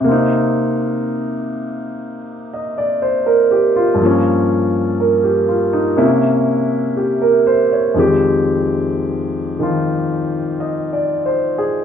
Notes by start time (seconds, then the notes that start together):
0.00 C3 A#3
0.08 C4 D#4
2.54 D#5
2.78 D5
3.02 C5
3.26 A#4
3.51 G4
3.76 F4
3.94 G2 F3
4.02 A#3 C#4
5.00 A#4
5.24 G4
5.48 F4
5.73 D#4
5.97 C3 A#3 C#4 E4
6.97 G4
7.22 A#4
7.47 C5
7.72 C#5
7.94 F2 D#3 G#3
7.99 G4
9.59 D#3 F3 F4
10.60 D#5
10.93 D5
11.26 C5
11.58 G#4